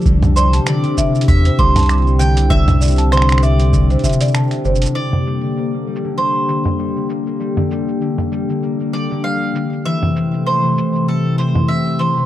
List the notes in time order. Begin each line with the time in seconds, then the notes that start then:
Already playing: D4 G4
0.01 cabasa
0.05 C2 D3 C4 E4, kick, cabasa
0.23 C3, mid tom, cabasa
0.36 G3 C5 D5, cabasa
0.53 G3 A5, closed hi-hat, cabasa
0.66 D3 D5, finger snap, cabasa
0.84 C3, closed hi-hat, cabasa
0.97 D3 E5, kick, cabasa
1.15 cabasa
1.21 closed hi-hat
1.28 E2 C3 E5, kick, cabasa
1.45 C5, closed hi-hat, cabasa
1.59 C2 D3 C5 D6, kick
1.76 C3 A5, closed hi-hat, mid tom, cabasa
1.79 closed hi-hat
1.83 closed hi-hat
1.86 G3 D6, finger snap, closed hi-hat, cabasa
1.93 closed hi-hat
1.98 closed hi-hat
2.02 closed hi-hat
2.06 G3, cabasa
2.19 D3 G5, cabasa
2.37 C3, closed hi-hat, cabasa
2.50 D3 E5, kick, cabasa
2.68 closed hi-hat, mid tom, cabasa
2.81 C3 D5, cabasa
2.84 cabasa
2.87 cabasa
2.90 cabasa
2.92 cabasa
2.96 A5, closed hi-hat, cabasa
2.99 cabasa
3.12 D3 C5, finger snap, cabasa
3.17 finger snap
3.22 finger snap
3.29 C3, finger snap, closed hi-hat, cabasa
3.32 finger snap
3.38 finger snap
3.42 G3 D5 E5, cabasa
3.59 G3, closed hi-hat, cabasa
3.73 D3, kick, cabasa
3.90 C3 C5, closed hi-hat, cabasa
3.99 closed hi-hat
4.03 D3 E5, kick, cabasa
4.09 closed hi-hat, cabasa
4.21 D5, closed hi-hat, cabasa
4.24 cabasa
4.28 cabasa
4.31 C3 A5, finger snap, cabasa
4.35 cabasa
4.47 cabasa
4.51 finger snap, closed hi-hat, cabasa
4.64 G1 D3 C5, cabasa
4.75 cabasa
4.82 C3, closed hi-hat, cabasa
4.85 cabasa
4.95 D3 A#3 G4 A4 D5, cabasa
5.13 mid tom, cabasa
5.26 G3, cabasa
5.43 D3, cabasa
5.57 A#3, cabasa
5.74 A#3, cabasa
5.87 G3
5.96 cabasa
6.04 D3, cabasa
6.18 G3 C5, cabasa
6.35 cabasa
6.48 D3, cabasa
6.65 mid tom, cabasa
6.79 G3, cabasa
6.96 D3, cabasa
7.09 A#3, cabasa
7.27 A#3, cabasa
7.40 G3, cabasa
7.57 D3, mid tom, cabasa
7.71 G3, cabasa
7.88 cabasa
8.01 D3, cabasa
8.18 mid tom, cabasa
8.32 G3, cabasa
8.49 D3, cabasa
8.63 A#3, cabasa
8.80 A#3, cabasa
8.93 G3 D5, cabasa
9.11 D3, cabasa
9.24 G3 F5, cabasa
9.42 cabasa
9.55 D3, cabasa
9.72 cabasa
9.85 C3 E3 A3 E4 E5, cabasa
10.03 C3, mid tom, cabasa
10.16 C4, cabasa
10.33 C4, cabasa
10.47 E3 C5, cabasa
10.64 C3, cabasa
10.78 E3, cabasa
10.95 cabasa
11.08 C3 A4, cabasa
11.25 cabasa
11.38 E3 C5, cabasa
11.47 cabasa
11.55 C3, mid tom
11.68 C4 E5, cabasa
11.86 C4, cabasa
11.99 E3 C5, cabasa
12.17 C3, cabasa